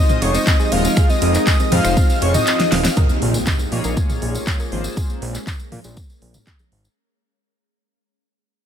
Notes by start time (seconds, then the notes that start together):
Already playing: F3 G#3 C4 D#4 F4 G4 G#4 C5 D#5 D#6
0.09 C4, closed hi-hat, mid tom, tambourine
0.22 F1 C#5 C#6, open hi-hat, ride
0.34 C4 D#5 D#6, closed hi-hat, tambourine
0.47 C4, kick, clap, closed hi-hat, tambourine
0.60 G#4, closed hi-hat, tambourine
0.72 D#1 G#3 C4 D#4 F4 A#4 F5 F6, open hi-hat, ride, high conga
0.85 C4, closed hi-hat, tambourine
0.97 G#4, finger snap, kick, closed hi-hat, tambourine
1.09 C4 D#5 D#6, closed hi-hat, tambourine
1.22 F1 C4, open hi-hat, ride
1.34 C4, clap, closed hi-hat, tambourine
1.47 D#5 D#6, kick, clap, closed hi-hat, tambourine
1.60 C4, closed hi-hat, tambourine
1.72 F2 G#3 C4 D#4 F4 C5 F5 F6, mid tom, open hi-hat, ride, high conga
1.85 F1 C5, finger snap, closed hi-hat, tambourine
1.97 C4, kick, closed hi-hat, tambourine
2.10 C4, closed hi-hat, tambourine
2.22 F1 C#5 C#6, open hi-hat, ride
2.34 C4 D#5 D#6, closed hi-hat, mid tom, tambourine
2.47 C4, clap, closed hi-hat, tambourine
2.59 D#5, snare, closed hi-hat, tambourine, high conga
2.72 D#1 C4 F5 F6, snare, open hi-hat, ride
2.85 C4, snare, closed hi-hat, tambourine
2.97 G#3 A#3 C#4 A#4, kick, closed hi-hat, tambourine, impact
3.09 A#3, closed hi-hat, tambourine
3.22 A#1 A#3, open hi-hat
3.34 A#3, closed hi-hat, tambourine
3.46 kick, clap, closed hi-hat, tambourine
3.59 A#3, closed hi-hat, tambourine
3.72 A#2 A#3 F4 G#4 C#5, open hi-hat, high conga
3.84 A#1 A#4, closed hi-hat, tambourine
3.97 A#3, kick, closed hi-hat, tambourine
4.09 A#3, closed hi-hat, mid tom, tambourine
4.22 A#1, open hi-hat
4.35 A#3, closed hi-hat, tambourine
4.47 A#3, kick, clap, closed hi-hat, tambourine
4.60 A#4, closed hi-hat, tambourine
4.72 G#1 A#3 F4 G#4 C5, open hi-hat, high conga
4.84 A#3, closed hi-hat, tambourine
4.97 G#4, kick, closed hi-hat, tambourine
5.10 A#3, closed hi-hat, tambourine
5.22 A#1 A#3, open hi-hat
5.35 A#3, clap, closed hi-hat, tambourine
5.47 kick, clap, closed hi-hat, tambourine
5.60 A#3, closed hi-hat, tambourine
5.72 A#2 A#3, mid tom, open hi-hat, high conga
5.84 A#1 G#4, closed hi-hat, tambourine
5.97 A#3, kick, closed hi-hat, tambourine
6.10 A#3, closed hi-hat, tambourine
6.22 A#1, open hi-hat
6.34 A#3, closed hi-hat, mid tom, tambourine
6.47 kick, clap, closed hi-hat, tambourine
6.59 G#4, closed hi-hat, tambourine, high conga
6.72 G#1 A#3, open hi-hat
6.85 A#3, closed hi-hat, tambourine